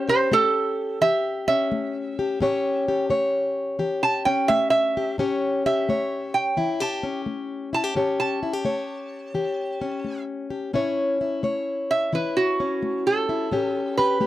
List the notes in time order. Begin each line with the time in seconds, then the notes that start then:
Already playing: A2 C#4
0.09 G4 C5
0.32 A3 G4 A4
1.01 E3 G4 E5
1.48 C#4 E5
1.72 A3
2.19 G4
2.40 A2 C#4 G4 C#5
2.88 G4
3.10 A3 C#5
3.79 E3 G4
4.03 A5
4.25 C#4 G5
4.48 A3 E5
4.70 E5
4.97 G4
5.18 A2 C#4 G4 C#5
5.66 G4 E5
5.89 A3 C#5
6.34 G5
6.57 E3 E4
6.80 G4 A5
7.03 C#4
7.26 A3
7.73 E4 A5
7.84 G4
7.95 A2 C#4 G4 C#5
8.20 A5
8.43 E4
8.53 G4
8.65 A3 C#5
9.34 E3 G4
9.81 C#4
10.04 A3
10.50 G4
10.73 A2 C#4 E4 C#5
11.21 E4
11.43 A3 C#5
11.91 E5
12.13 E3 E4 B4
12.37 F#4
12.60 C#4
12.82 A3
13.07 A4
13.29 E4
13.51 A2 C#4 G4
13.97 G4 B4
14.20 A3 G4